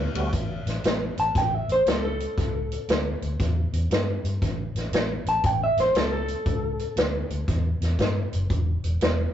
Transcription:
0.15 D2 G3 A3 B3 C#4 F#4, ride
0.32 A1, kick, closed hi-hat
0.66 A1, snare, closed hi-hat
0.84 A1, snare, closed hi-hat
1.17 A1 A5, closed hi-hat
1.35 A1 G5, kick, snare, closed hi-hat
1.55 E5
1.68 A1 C5, closed hi-hat
1.86 C#2 A4, snare, closed hi-hat
2.05 A4
2.20 closed hi-hat
2.38 C#2, kick, snare, closed hi-hat
2.72 closed hi-hat
2.88 D2, snare, closed hi-hat
3.22 D2, closed hi-hat
3.39 E2, kick, snare, closed hi-hat
3.72 E2, closed hi-hat
3.90 G2, snare, closed hi-hat
4.24 G2, closed hi-hat
4.42 A1, kick, snare, closed hi-hat
4.75 A1, snare, closed hi-hat
4.92 A1, snare, closed hi-hat
5.25 A1 A5, closed hi-hat
5.44 A1 G5, kick, closed hi-hat
5.64 E5
5.77 A1 C5, snare, closed hi-hat
5.94 C#2 A4, snare, closed hi-hat
6.13 A4
6.28 closed hi-hat
6.46 C#2, kick, closed hi-hat
6.79 closed hi-hat
6.96 D2, snare, closed hi-hat
7.30 D2, closed hi-hat
7.48 E2, kick, snare, closed hi-hat
7.80 E2, snare, closed hi-hat
7.99 G2, kick, snare, closed hi-hat
8.33 F#1, closed hi-hat
8.50 E1, kick, closed hi-hat
8.84 E1, closed hi-hat
9.01 E1, snare, closed hi-hat

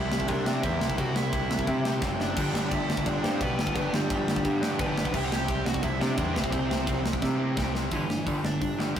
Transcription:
Already playing: C2 C3 G3 C4 E4 G4 E5
0.11 C2, snare
0.20 kick
0.28 C2 D4 D5, kick, ride
0.45 C3 G3 C4 E4 G4, snare
0.62 E2 C3 G3 C4 E4 G4 E5, kick, ride
0.81 C2, snare
0.90 kick
0.97 C2 C3 G3 C4 E4 F#4 G4 F#5, kick, ride
1.16 C2 E4 E5, snare
1.33 C2, kick, ride
1.51 C2, snare
1.59 kick
1.67 C3, kick, ride
1.84 C3 G3 C4 E4 G4, snare
2.01 F#1 C3 G3 C4 E4 G4, kick, snare
2.20 D4 D5, snare
2.35 G1 G2 D3 G3 B3 D4 G4, kick, splash, crash
2.54 G1, snare
2.71 G1 E4 E5, kick, ride
2.89 G1, snare
2.97 kick
3.06 G1 D4 D5, kick, ride
3.23 G2 D3 G3 B3 C4 D4 G4 C5, snare
3.39 B1 G2 D3 G3 B3 D4 G4 B4, kick, ride
3.59 G1, snare
3.67 kick
3.75 G1 G2 D3 G3 B3 D4 G4 B4, kick, ride
3.93 G1 G3 G4, snare
4.10 G1, kick, ride
4.27 G1, snare
4.36 kick
4.45 G2, kick, ride
4.61 G2 D3 G3 B3 D4 G4, snare
4.78 G1 G2 D3 G3 B3 D4 G4 B4, kick, ride
4.87 B3 B4
4.98 snare
5.05 kick
5.13 C2 C3 G3 C4 E4 G4 E5, kick, crash
5.24 F#5
5.32 C2 G4 G5, snare
5.48 C2, kick, ride
5.65 C2 F#4 F#5, snare
5.74 kick
5.83 C2 E4 E5, kick, ride
5.99 C3 G3 C4 D4 E4 G4 D5, snare
6.16 E2 C3 G3 C4 E4 G4, kick, ride
6.33 C2 C4 C5, snare
6.44 kick
6.50 C2 C3 G3 C4 E4 G4, kick, ride
6.71 C2, snare
6.87 C2, kick, ride
7.04 C2, snare
7.13 kick
7.22 C3, kick, snare
7.37 C3 G3 C4 E4 G4
7.55 C2 C3 G3 C4 E4 G4, kick, snare
7.75 snare
7.91 G1 G2 D3 E3 G3 E4, kick, open hi-hat
8.09 G2 D3, snare
8.26 G1 G2 D3 G3, kick, open hi-hat
8.44 G1 G2 D3 D4 D5, snare
8.61 G1 G2 D3, kick, open hi-hat
8.79 G2 D3 G3, snare
8.96 G1 G2 G3 G4, kick, open hi-hat

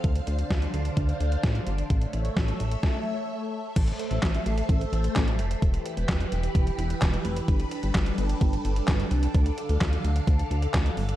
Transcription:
Already playing: F5
0.04 D2 D3 D4 C5, kick, closed hi-hat
0.16 closed hi-hat
0.27 D2, closed hi-hat
0.39 closed hi-hat
0.50 D2, kick, snare, closed hi-hat
0.62 closed hi-hat
0.74 D2, closed hi-hat
0.85 closed hi-hat
0.97 D2, kick, closed hi-hat
1.09 closed hi-hat
1.20 D2, closed hi-hat
1.32 closed hi-hat
1.43 A2, kick, snare, closed hi-hat
1.55 closed hi-hat
1.67 G1, closed hi-hat
1.78 closed hi-hat
1.90 A1 A3 A4 C#5 E5, kick, closed hi-hat
2.01 closed hi-hat
2.13 A1, closed hi-hat
2.25 closed hi-hat
2.37 A1, kick, snare, closed hi-hat
2.48 closed hi-hat
2.60 A1, closed hi-hat
2.72 closed hi-hat
2.83 kick, snare
3.76 A1 A3 A4 C5 E5, kick, closed hi-hat, crash
3.88 closed hi-hat
3.99 closed hi-hat
4.11 A1, closed hi-hat
4.23 A1, kick, snare, clap, closed hi-hat
4.35 closed hi-hat
4.46 A1, closed hi-hat
4.58 closed hi-hat
4.69 A1, kick, closed hi-hat
4.81 closed hi-hat
4.92 A1, closed hi-hat
5.04 closed hi-hat
5.16 A1, kick, snare, clap, closed hi-hat
5.28 closed hi-hat
5.39 F1, closed hi-hat
5.51 closed hi-hat
5.62 E1 E3 E4 G4 B4, kick, closed hi-hat
5.74 closed hi-hat
5.86 closed hi-hat
5.97 E1, closed hi-hat
6.09 E1, kick, snare, clap, closed hi-hat
6.20 closed hi-hat
6.32 E1, closed hi-hat
6.43 closed hi-hat
6.55 E1, kick, closed hi-hat
6.67 closed hi-hat
6.78 E1, closed hi-hat
6.90 closed hi-hat
7.02 E1, kick, snare, clap, closed hi-hat
7.14 closed hi-hat
7.25 F1, closed hi-hat
7.37 closed hi-hat
7.48 G1 G3 D4 A4, kick, closed hi-hat
7.60 closed hi-hat
7.71 closed hi-hat
7.83 G1, closed hi-hat
7.95 G1, kick, snare, clap, closed hi-hat
8.06 closed hi-hat
8.18 G1, closed hi-hat
8.29 closed hi-hat
8.41 G1, kick, closed hi-hat
8.53 closed hi-hat
8.65 G1, closed hi-hat
8.76 closed hi-hat
8.88 G1, kick, snare, clap, closed hi-hat
9.00 closed hi-hat
9.11 C2, closed hi-hat
9.23 closed hi-hat
9.34 D2 D3 F5, kick, closed hi-hat
9.46 closed hi-hat
9.58 closed hi-hat
9.69 D2, closed hi-hat
9.81 D2, kick, snare, clap, closed hi-hat
9.93 closed hi-hat
10.04 D2, closed hi-hat
10.16 closed hi-hat
10.27 D2, kick, closed hi-hat
10.39 closed hi-hat
10.51 D2, closed hi-hat
10.62 closed hi-hat
10.74 D2, kick, snare, clap, closed hi-hat
10.86 closed hi-hat
10.97 G1, open hi-hat
11.09 closed hi-hat

